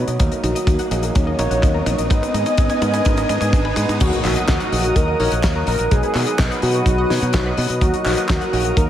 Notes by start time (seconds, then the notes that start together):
Already playing: F#3 B3 D#4 B4 C#5 D#5 F#5 D#6, riser
0.08 B2 D#5, closed hi-hat
0.20 D#2 F#3 A#3 D#4 A#4 D#5, kick, closed hi-hat, mid tom
0.32 A#4, closed hi-hat
0.43 A#1 D#4 F#4, closed hi-hat, mid tom
0.55 D#5, closed hi-hat
0.67 D#2 D#4, kick, closed hi-hat, mid tom
0.79 F#5, closed hi-hat
0.91 A#1 F#3 A#3 D#4 G#4, closed hi-hat, mid tom
1.03 A#4, closed hi-hat
1.15 D#2 D#4 C#5, kick, closed hi-hat, mid tom
1.27 D#5
1.39 A#1 F#3 A#3 D#4 C#5, closed hi-hat, mid tom
1.51 A#1 F#5, closed hi-hat
1.62 D#2 D#4, kick, closed hi-hat, mid tom
1.74 A#4
1.86 A#1 D#4, closed hi-hat, mid tom
1.98 A#1 D#5, closed hi-hat
2.10 G#1 G#3 B3 D#4 B4 D#5 G#5, kick, closed hi-hat, mid tom
2.22 B4, closed hi-hat, mid tom
2.34 G#2 D#4, closed hi-hat, mid tom
2.46 D#5, closed hi-hat, mid tom
2.58 G#1 D#4, kick, closed hi-hat, mid tom
2.69 G#5, closed hi-hat, mid tom
2.82 G#2 G#3 B3 D#4 A#4, closed hi-hat, mid tom
2.94 B4, closed hi-hat, mid tom
3.05 G#1 D#4, kick, closed hi-hat, mid tom
3.17 D#5, closed hi-hat, mid tom
3.29 G#2 D#4, closed hi-hat, mid tom
3.41 G#2 G#5, closed hi-hat, mid tom
3.53 G#1 D#4, kick, closed hi-hat, mid tom
3.65 B4, mid tom
3.76 G#2 G#3 B3 D#4 B4, closed hi-hat, mid tom
3.89 G#2 D#5, closed hi-hat, mid tom
4.00 D#2 F#3 A#3 D#4 F#4 A#4 D#5 F#5 D#6, kick, closed hi-hat, crash, impact
4.13 A#4, closed hi-hat
4.24 A#1 D#4, clap, open hi-hat
4.36 D#5, closed hi-hat
4.48 D#2 D#4 F#4, kick, snare, clap, closed hi-hat
4.60 F#5, closed hi-hat
4.72 A#1 F#3 A#3 D#4 G#4, open hi-hat
4.84 A#4, closed hi-hat
4.96 D#2 D#4 A#4, kick, closed hi-hat
5.08 D#5
5.20 A#1 F#3 A#3 D#4 C#5, open hi-hat
5.32 A#1 F#5, closed hi-hat
5.43 D#2 D#4, kick, snare, clap, closed hi-hat
5.56 A#4
5.67 A#1 D#4 A#4, open hi-hat
5.79 A#1 D#5, closed hi-hat
5.91 B1 F#3 B3 D#4 G#4 B4 D#5 D#6, kick, closed hi-hat
6.03 B4, closed hi-hat
6.15 B2 D#4, clap, open hi-hat
6.27 D#5, closed hi-hat
6.39 B1 D#4, kick, snare, clap, closed hi-hat
6.51 F#5, closed hi-hat
6.62 B2 F#3 B3 D#4 F#4 G#4, open hi-hat
6.74 B4, closed hi-hat
6.86 B1 D#4, kick, closed hi-hat
6.98 D#5
7.10 B2 F#3 B3 D#4 C#5, snare, open hi-hat
7.21 B2 F#5, closed hi-hat
7.33 B1 D#4, kick, snare, clap, closed hi-hat
7.46 B4
7.57 B2 D#4, open hi-hat
7.70 B2 D#5, closed hi-hat
7.81 D#2 F#3 A#3 D#4 F#4 A#4 D#6, kick, closed hi-hat
7.94 A#4, closed hi-hat
8.05 A#1 D#4, clap, open hi-hat
8.17 D#5, closed hi-hat
8.29 D#2 D#4 F#4, kick, snare, clap, closed hi-hat
8.41 F#5, closed hi-hat
8.53 A#1 F#3 A#3 D#4 G#4, open hi-hat
8.64 A#4, closed hi-hat
8.77 D#2 D#4 A#4, kick, closed hi-hat